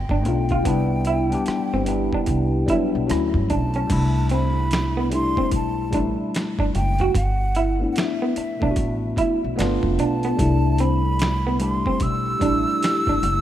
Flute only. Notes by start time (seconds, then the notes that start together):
Already playing: G5
3.52 A5
4.33 B5
5.14 C6
5.55 A5
6.76 G5
7.16 F#5
7.92 F#5
7.97 E5
10.01 A5
10.81 B5
11.62 C6
12.02 E6